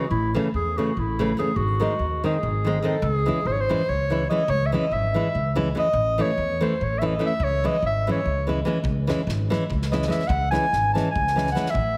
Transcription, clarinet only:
0.10 0.33 E4 medium
0.56 0.79 G#4 medium
0.78 1.01 F#4 medium
0.99 1.38 E4 medium
1.39 1.58 G#4 medium
1.57 2.24 F#4 medium
2.25 2.80 G#4 medium
2.84 3.03 A4 medium
3.03 3.14 A4 medium
3.14 3.48 G#4 medium
3.47 3.53 C5 medium
3.52 3.62 C#5 medium
3.61 3.90 C5 loud
3.89 4.29 C#5 medium
4.30 4.51 D#5 loud
4.50 4.68 C#5 loud
4.66 4.75 E5 medium
4.73 4.94 D#5 loud
4.93 5.57 E5 loud
5.79 6.23 D#5 loud
6.22 6.65 C#5 loud
6.63 6.85 C5 medium
6.83 7.00 C#5 medium
6.99 7.08 E5 medium
7.07 7.23 D#5 medium
7.26 7.45 E5 loud
7.44 7.68 C#5 loud
7.66 7.84 D#5 medium
7.86 8.07 E5 loud
8.12 8.47 C#5 medium
9.92 10.13 D#5 medium
10.11 10.29 E5 medium
10.28 10.50 F#5 loud
10.51 10.92 G#5 loud
10.93 11.11 A5 medium
11.11 11.51 G#5 medium
11.52 11.72 F#5 medium
11.70 11.97 E5 loud

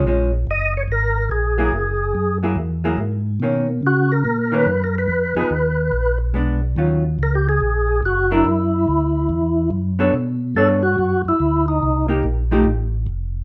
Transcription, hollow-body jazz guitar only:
0.06 0.30 F3 soft
0.06 0.30 G#3 soft
0.06 0.31 C#4 medium
1.58 1.71 F#3 medium
1.58 1.72 A#3 medium
1.58 1.72 E4 medium
1.58 1.72 G#4 medium
2.43 2.56 F#3 soft
2.43 2.56 A#3 soft
2.43 2.56 E4 medium
2.43 2.56 G#4 medium
2.84 2.97 F#3 medium
2.84 2.98 A#3 medium
2.84 2.98 E4 medium
2.84 2.98 G#4 medium
3.42 3.66 D#3 soft
3.42 3.66 A#3 soft
3.42 3.67 C#4 medium
4.52 4.65 D#3 medium
4.52 4.66 A#3 medium
4.52 4.66 C#4 medium
5.36 5.50 F3 medium
5.36 5.50 B3 medium
5.36 5.50 D#4 medium
5.36 5.50 G#4 medium
6.34 6.59 G#3 soft
6.34 6.60 B3 soft
6.34 6.60 D4 medium
6.78 7.02 D#3 soft
6.78 7.02 F#3 soft
6.78 7.02 C#4 soft
6.78 7.02 F4 medium
8.31 8.44 F#3 medium
8.31 8.45 D4 medium
8.31 8.45 E4 medium
8.31 8.45 A#4 medium
9.99 10.12 B3 medium
9.99 10.13 D4 medium
9.99 10.13 A4 medium
9.99 10.13 C#5 medium
10.57 10.81 B3 medium
10.57 10.81 D4 medium
10.57 10.81 A4 soft
10.57 10.81 C#5 medium
12.08 12.22 A#3 medium
12.08 12.22 D#4 medium
12.08 12.23 G4 medium
12.51 12.65 F3 medium
12.51 12.65 A3 medium
12.51 12.65 D#4 medium
12.51 12.65 G4 medium

